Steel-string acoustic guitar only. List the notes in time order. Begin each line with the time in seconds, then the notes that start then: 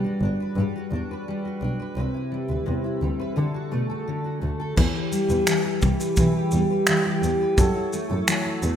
Already playing: G3 D4 B4
0.04 F#4
0.23 D4
0.40 B4
0.58 G3 B4
0.76 F#4
0.93 D4
1.11 B4
1.28 G3
1.45 F#4
1.62 D4
1.80 B4
1.97 C3 B4
2.14 E4
2.32 G3
2.49 B4
2.66 C3
2.84 E4
3.02 G3
3.20 B4
3.36 D3 A4
3.54 F#4
3.72 A3
3.90 A4
4.08 D3
4.24 F#4
4.41 A3
4.60 A4
4.76 E3 B4
4.95 G4
5.11 G3
5.30 B4
5.48 E3
5.66 G4
5.83 G3
6.00 B4
6.18 E3 B4
6.37 G4
6.54 G3
6.70 B4
6.88 E3
7.06 G4
7.24 G3
7.41 B4
7.58 F#3 A4
7.76 E4
7.93 A3
8.11 A4
8.28 F#3
8.46 E4
8.64 A3